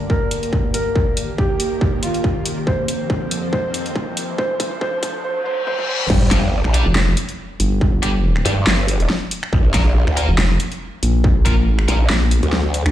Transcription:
Already playing: G2 D3 A#3 G4 D5, riser
0.10 A#4, kick
0.31 closed hi-hat
0.43 closed hi-hat
0.53 kick
0.74 A#4, closed hi-hat
0.96 D#2 D#3 A#4, kick
1.17 closed hi-hat
1.38 G4, kick
1.60 closed hi-hat
1.81 kick
2.03 F4, closed hi-hat
2.14 closed hi-hat
2.24 kick
2.46 closed hi-hat
2.67 F2 F3 C4 C5, kick
2.88 closed hi-hat
3.10 kick
3.31 closed hi-hat
3.53 C5, kick
3.74 closed hi-hat
3.86 closed hi-hat
3.96 kick
4.17 closed hi-hat
4.38 F#2 F#3 A3 D4 A4 C5, kick
4.60 kick, closed hi-hat
4.81 C5, kick
5.03 kick, closed hi-hat
5.24 C5, reverse cymbal
5.46 C5
5.67 C5, high tom
5.79 high tom
5.88 C5
6.00 mid tom
6.10 G1, kick, crash, sub drop
6.31 G1 G3 D4 G4, finger snap, kick, snare, closed hi-hat
6.64 A#1, finger snap
6.74 G3 D4 G4, closed hi-hat
6.86 F1
6.96 snare, clap
7.17 closed hi-hat
7.29 closed hi-hat
7.60 G1, closed hi-hat
7.81 kick
8.02 G3 D4 G4, finger snap, closed hi-hat
8.36 finger snap
8.45 G2 G3 D4 G4, closed hi-hat
8.67 G1, snare, clap
8.88 closed hi-hat
9.00 closed hi-hat
9.10 snare
9.31 closed hi-hat
9.43 finger snap
9.53 A#1, kick
9.74 A#1 A#3 F4 A#4, finger snap, kick, snare, closed hi-hat
10.07 D2, finger snap
10.17 A#3 F4 A#4, closed hi-hat
10.29 F1
10.38 snare, clap
10.60 closed hi-hat
10.72 closed hi-hat
11.03 A#1, closed hi-hat
11.24 kick
11.45 A#3 F4 A#4, finger snap, kick, closed hi-hat
11.62 A1
11.79 finger snap
11.88 A#1 A#3 F4 A#4, closed hi-hat
12.10 A#1, snare, clap
12.31 closed hi-hat
12.43 D2, closed hi-hat
12.53 snare
12.74 closed hi-hat
12.86 D2, finger snap

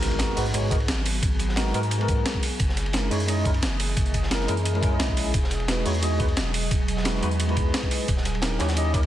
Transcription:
Already playing: G#1 F#3 G#3 B3 D#4 F#4 G#4 A#4, impact
0.02 snare, closed hi-hat, ride
0.11 ride
0.19 G#3 B3 D#4 F#4 A#4, snare, closed hi-hat, ride
0.36 G#2 G#3 B3 D#4 F#4 B4, closed hi-hat, open hi-hat
0.46 closed hi-hat
0.53 G#3 B3 D#4 F#4 C#5, closed hi-hat, ride
0.70 G#3 B3 D#4 F#4 A#4, kick, closed hi-hat, ride
0.80 ride
0.88 G#1, snare, closed hi-hat, ride
1.06 open hi-hat, ride
1.23 G#1, kick, closed hi-hat, ride
1.39 closed hi-hat, ride
1.49 snare
1.56 G#3 B3 D#4 F#4 A#4, snare, closed hi-hat, ride
1.66 snare
1.73 G#2 G#3 B3 D#4 F#4 A#4, closed hi-hat, ride
1.83 closed hi-hat
1.91 closed hi-hat, ride
1.98 G#3 B3 D#4 F#4, ride
2.03 A#4
2.08 kick, closed hi-hat, ride
2.25 snare, closed hi-hat, ride
2.34 kick, ride
2.43 E3 A#3 D#5, open hi-hat, ride
2.59 F#1, kick, closed hi-hat, ride
2.69 snare
2.76 snare, closed hi-hat, ride
2.86 ride
2.93 G#3 C#4 D#4 E4 A#4, snare, closed hi-hat, ride
3.10 F#2 G#3 C#4 D#4 E4 C#5, closed hi-hat, open hi-hat
3.20 closed hi-hat
3.27 G#3 C#4 D#4 E4 D#5, closed hi-hat, ride
3.44 G#3 C#4 D#4 E4 A#4, kick, closed hi-hat, ride
3.54 ride
3.62 F#1, snare, closed hi-hat, ride
3.80 open hi-hat, ride
3.97 F#1, kick, closed hi-hat, ride
4.06 closed hi-hat
4.14 kick, closed hi-hat, ride
4.23 snare
4.30 G#3 C#4 D#4 E4 A#4, snare, closed hi-hat, ride
4.40 snare
4.47 F#2 G#3 C#4 D#4 E4 A#4, closed hi-hat, ride
4.57 closed hi-hat
4.65 closed hi-hat, ride
4.73 G#3 C#4 D#4 E4 A#4, ride
4.82 G#3 C#4 D#4 E4 A#4, kick, closed hi-hat, ride
4.89 G#3 C#4 D#4 E4
4.94 D#5
5.00 A#1, snare, closed hi-hat, ride
5.08 kick, ride
5.17 A#1, open hi-hat, ride
5.34 E1 F#3 D#5, kick, closed hi-hat, ride
5.43 snare
5.51 snare, closed hi-hat, ride
5.60 ride
5.67 G#3 D#4 E4 F#4 B4, snare, closed hi-hat, ride
5.84 E2 G#3 D#4 E4 F#4 C#5, closed hi-hat, open hi-hat
5.94 closed hi-hat
6.01 G#3 D#4 E4 F#4 D#5, closed hi-hat, ride
6.18 G#3 D#4 E4 F#4 B4, kick, closed hi-hat, ride
6.28 ride
6.37 E1, snare, closed hi-hat, ride
6.54 open hi-hat, ride
6.71 E1, kick, closed hi-hat, ride
6.88 closed hi-hat, ride
6.97 snare
7.04 G#3 D#4 E4 F#4 B4, snare, closed hi-hat, ride
7.15 snare
7.21 E2 G#3 D#4 E4 F#4 B4, closed hi-hat, ride
7.31 closed hi-hat
7.40 closed hi-hat, ride
7.46 G#3 D#4 E4 F#4, ride
7.51 B4
7.57 kick, closed hi-hat, ride
7.74 snare, closed hi-hat, ride
7.83 kick, ride
7.91 open hi-hat, ride
8.08 D#1 E3 C#4 G4, kick, closed hi-hat, ride
8.17 snare
8.25 snare, closed hi-hat, ride
8.35 ride
8.41 C#4 D#4 E4 G4 A#4, snare, closed hi-hat, ride
8.59 D#2 C#4 D#4 E4 G4 C#5, snare, closed hi-hat, ride
8.69 snare, closed hi-hat, ride
8.76 C#4 D#4 E4 G4 D#5, closed hi-hat, ride
8.93 C#4 D#4 E4 G4 A#4, kick, closed hi-hat, ride
9.03 ride

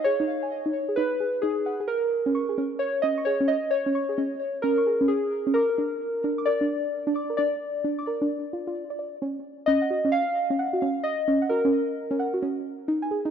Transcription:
0.04 G#4 C#5
0.20 D#4
0.43 G#5
0.66 D#4
0.89 G#4
0.96 D#4 B4
1.20 G#4
1.42 D#4 G#4
1.66 F#5
1.80 G#4
1.88 A#4
2.26 C#4
2.35 C#6
2.49 G#4
2.58 C#4
2.79 C#5
3.02 C#4 D#5
3.18 C#6
3.25 G#4 C#5
3.40 C#4
3.48 D#5
3.71 C#5
3.86 C#4
3.95 C#6
4.09 G#4
4.18 C#4
4.62 C#4 A#4
4.78 C#6
4.87 G#4
5.01 C#4
5.08 G#4
5.47 C#4
5.54 A#4 D6
5.69 A#4
5.78 D4
6.24 D4
6.38 D6
6.45 A#4 D5
6.61 D4
7.07 D4
7.16 D6
7.30 A#4
7.37 D4 D5
7.84 D4
7.99 D6
8.07 A#4
8.21 D4
8.53 F4
8.67 F4
8.90 D5
8.99 D5
9.22 C#4
9.66 C#4 D#5
9.82 F#5
9.90 F#4
10.05 C#4
10.12 F5
10.50 C#4
10.59 F#5
10.73 F#4
10.82 C#4
11.03 D#5
11.28 C#4
11.42 F#5
11.49 F#4 A#4
11.65 C#4
12.11 C#4
12.19 F#5
12.34 F#4
12.42 C#4
12.88 D#4
13.02 G#5
13.11 G#4
13.25 D#4

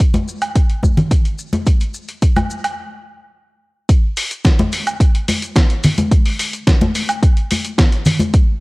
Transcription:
0.00 kick, closed hi-hat, maracas
0.14 closed hi-hat, high conga, maracas
0.28 maracas
0.41 closed hi-hat, high woodblock, maracas
0.55 kick, closed hi-hat, maracas
0.70 closed hi-hat
0.83 kick, high conga, maracas
0.97 closed hi-hat, low conga, maracas
1.11 kick, closed hi-hat, maracas
1.25 closed hi-hat, maracas
1.39 maracas
1.53 closed hi-hat, high conga, maracas
1.66 kick, closed hi-hat, maracas
1.81 closed hi-hat, maracas
1.94 maracas
2.08 closed hi-hat, maracas
2.22 kick, closed hi-hat, maracas
2.36 closed hi-hat, high conga, high woodblock, maracas
2.50 maracas
2.64 closed hi-hat, high woodblock, maracas
3.89 kick, closed hi-hat, maracas
4.17 open hi-hat, maracas
4.31 closed hi-hat, maracas
4.44 kick, snare, closed hi-hat, maracas
4.59 closed hi-hat, high conga
4.72 open hi-hat, maracas
4.87 closed hi-hat, high woodblock, maracas
5.00 kick, closed hi-hat, maracas
5.15 closed hi-hat
5.28 open hi-hat, high conga, maracas
5.42 closed hi-hat, maracas
5.56 kick, snare, closed hi-hat, maracas
5.70 closed hi-hat
5.84 open hi-hat, low conga, maracas
5.98 closed hi-hat, high conga, maracas
6.11 kick, closed hi-hat, maracas
6.25 open hi-hat
6.39 open hi-hat, maracas
6.53 closed hi-hat, maracas
6.67 kick, snare, closed hi-hat, maracas
6.81 closed hi-hat, high conga
6.95 open hi-hat, maracas
7.09 closed hi-hat, high woodblock, maracas
7.22 kick, closed hi-hat, maracas
7.37 closed hi-hat
7.51 open hi-hat, high conga, maracas
7.64 closed hi-hat, maracas
7.78 kick, snare, closed hi-hat, maracas
7.92 closed hi-hat
8.05 open hi-hat, low conga, maracas
8.19 closed hi-hat, high conga, maracas
8.34 kick, closed hi-hat, maracas

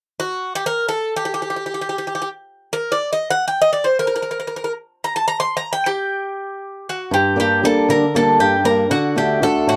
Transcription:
0.20 F#4
0.55 G4
0.66 A#4
0.89 A4
1.16 G4
1.25 G4
1.34 G4
1.42 G4
1.50 G4
1.56 G4
1.66 G4
1.74 G4
1.81 G4
1.89 G4
1.98 G4
2.07 G4
2.15 G4
2.22 G4
2.73 A#4
2.92 D5
3.13 D#5
3.31 F#5
3.48 G5
3.62 D#5
3.73 D5
3.84 C5
3.99 A#4
4.07 A#4
4.16 A#4
4.22 A#4
4.31 A#4
4.40 A#4
4.47 A#4
4.56 A#4
4.64 A#4
5.04 A#5
5.16 A5
5.28 A#5
5.40 C6
5.57 A#5
5.73 G5
5.86 G4
6.89 F#4
7.11 G2 G4
7.36 G3 A#3 D4 G4
7.63 G3 A#3 D4 A4
7.89 D3 A#4
8.15 G3 A#3 D4 A4
8.39 G2 G4
8.64 G3 A#3 D4 A#4
8.91 D3 F#4
9.16 A3 D4 F#4 G4
9.42 A3 D4 F#4 A4
9.67 A2 F#4

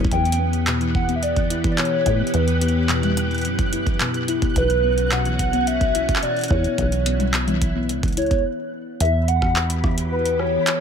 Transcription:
Already playing: B3
0.05 kick
0.11 E2 E3 G4 G5 F#6, kick, closed hi-hat
0.25 closed hi-hat
0.32 closed hi-hat
0.39 B3
0.53 closed hi-hat
0.67 B2, clap, closed hi-hat
0.81 E3, closed hi-hat
0.95 E3 F#5, kick
1.09 B3, closed hi-hat
1.16 E5
1.23 D5, closed hi-hat
1.37 E3, kick, closed hi-hat
1.50 E4, closed hi-hat
1.64 E3, kick, closed hi-hat
1.71 D5
1.78 B2 C#5, clap, closed hi-hat
1.85 closed hi-hat
2.06 A2 E4, kick, closed hi-hat
2.20 B3
2.27 closed hi-hat
2.34 E2 E3 B4, closed hi-hat
2.48 closed hi-hat
2.61 B3, closed hi-hat
2.68 closed hi-hat
2.89 B2, clap, closed hi-hat
3.03 E3, closed hi-hat, high tom
3.07 high tom
3.10 high tom
3.14 closed hi-hat, high tom
3.17 E3, high tom
3.21 high tom
3.24 high tom
3.28 B3, closed hi-hat, high tom
3.34 closed hi-hat
3.38 closed hi-hat
3.41 closed hi-hat
3.45 F#2, closed hi-hat
3.59 E3, kick, closed hi-hat
3.73 E4, closed hi-hat
3.87 E3, kick, closed hi-hat
4.00 B2, clap, closed hi-hat
4.14 closed hi-hat
4.28 E4, closed hi-hat
4.42 B3, kick, closed hi-hat
4.56 B1 E3 C#4 F#4 B4, kick, closed hi-hat
4.70 closed hi-hat
4.84 B3
4.98 closed hi-hat
5.12 B2 F#5, clap, closed hi-hat
5.25 E3, closed hi-hat
5.39 E3, kick, closed hi-hat
5.53 B3, closed hi-hat
5.67 E5, closed hi-hat
5.81 E3, kick, closed hi-hat
5.95 E4, closed hi-hat
6.09 E3, kick, closed hi-hat
6.16 clap
6.23 B2 D5, closed hi-hat
6.37 closed hi-hat
6.39 closed hi-hat
6.41 closed hi-hat
6.44 closed hi-hat
6.46 closed hi-hat
6.48 E2 E4 C#5, kick, closed hi-hat
6.64 B3, closed hi-hat
6.78 B1 E3 E4, kick, closed hi-hat
6.92 closed hi-hat
7.06 B3, closed hi-hat
7.20 closed hi-hat, high tom
7.34 B2, clap, closed hi-hat
7.48 E3, closed hi-hat, high tom
7.62 E3, kick, closed hi-hat
7.75 B3
7.89 C#2, closed hi-hat
8.03 E3, kick, closed hi-hat
8.08 closed hi-hat
8.13 closed hi-hat
8.17 E4 C#5, closed hi-hat
8.26 closed hi-hat
8.31 B3, kick, closed hi-hat
9.00 E2 E3 B3 F#4 G4 E5 B5, closed hi-hat
9.28 F#5, closed hi-hat
9.42 kick, cross-stick
9.56 clap
9.70 closed hi-hat
9.84 kick, cross-stick
9.98 closed hi-hat
10.12 B4
10.26 closed hi-hat
10.39 C#5, cross-stick
10.67 clap, closed hi-hat

